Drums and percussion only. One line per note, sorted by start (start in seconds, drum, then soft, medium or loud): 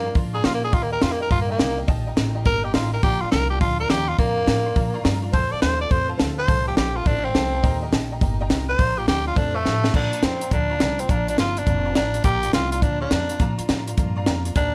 0.15 kick loud
0.15 open hi-hat soft
0.44 snare loud
0.44 open hi-hat medium
0.73 kick loud
0.73 open hi-hat medium
1.02 snare loud
1.02 open hi-hat medium
1.31 kick loud
1.31 open hi-hat medium
1.59 snare loud
1.59 open hi-hat medium
1.88 kick loud
1.88 open hi-hat soft
2.17 snare loud
2.17 open hi-hat medium
2.45 kick loud
2.45 open hi-hat soft
2.74 snare loud
2.74 open hi-hat medium
3.03 kick loud
3.03 open hi-hat medium
3.32 snare loud
3.32 open hi-hat medium
3.61 kick loud
3.61 open hi-hat medium
3.90 snare loud
3.90 open hi-hat medium
4.18 kick loud
4.18 open hi-hat medium
4.47 snare loud
4.47 open hi-hat medium
4.76 kick loud
4.76 open hi-hat medium
5.05 snare loud
5.05 open hi-hat medium
5.33 kick loud
5.33 open hi-hat medium
5.62 snare loud
5.62 open hi-hat medium
5.91 kick loud
5.91 open hi-hat medium
6.20 snare loud
6.20 open hi-hat medium
6.48 kick loud
6.48 open hi-hat medium
6.77 snare loud
6.77 open hi-hat medium
7.06 kick loud
7.06 open hi-hat soft
7.35 snare loud
7.35 open hi-hat medium
7.64 kick loud
7.64 open hi-hat medium
7.93 snare loud
7.93 open hi-hat medium
8.21 kick loud
8.21 open hi-hat medium
8.50 snare loud
8.50 open hi-hat medium
8.79 kick loud
8.79 open hi-hat medium
9.08 snare loud
9.08 open hi-hat medium
9.36 kick loud
9.36 open hi-hat soft
9.66 snare medium
9.84 snare medium
9.94 kick loud
9.94 crash loud
10.13 closed hi-hat medium
10.23 snare loud
10.23 closed hi-hat medium
10.41 closed hi-hat medium
10.51 kick loud
10.51 closed hi-hat medium
10.80 snare loud
10.80 closed hi-hat medium
10.99 closed hi-hat medium
11.09 kick loud
11.09 closed hi-hat medium
11.28 closed hi-hat medium
11.38 snare loud
11.38 closed hi-hat medium
11.57 closed hi-hat medium
11.67 kick loud
11.67 closed hi-hat medium
11.95 snare loud
11.95 closed hi-hat medium
12.14 closed hi-hat medium
12.24 kick loud
12.24 closed hi-hat medium
12.43 closed hi-hat medium
12.53 snare loud
12.53 closed hi-hat medium
12.72 closed hi-hat medium
12.82 kick loud
12.82 closed hi-hat medium
13.11 snare loud
13.11 closed hi-hat medium
13.29 closed hi-hat medium
13.40 kick loud
13.40 closed hi-hat medium
13.59 closed hi-hat medium
13.69 snare loud
13.69 closed hi-hat medium
13.88 closed hi-hat medium
13.98 kick loud
13.98 closed hi-hat medium
14.26 snare loud
14.26 closed hi-hat medium
14.45 closed hi-hat medium
14.56 kick loud
14.56 closed hi-hat medium